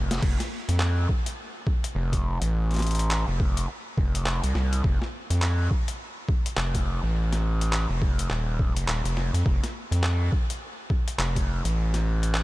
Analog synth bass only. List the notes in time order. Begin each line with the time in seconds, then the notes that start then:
Already playing: F1
0.23 F1
0.69 F2
1.95 F1
2.41 A1
3.28 F1
3.97 F1
4.44 C2
4.55 C2
4.84 F1
5.30 F2
6.57 F1
7.03 A1
7.90 F1
8.30 D#1
8.76 F1
8.87 D#1
9.05 F1
9.34 F2
9.46 F1
9.91 F2
11.18 F1
11.65 A1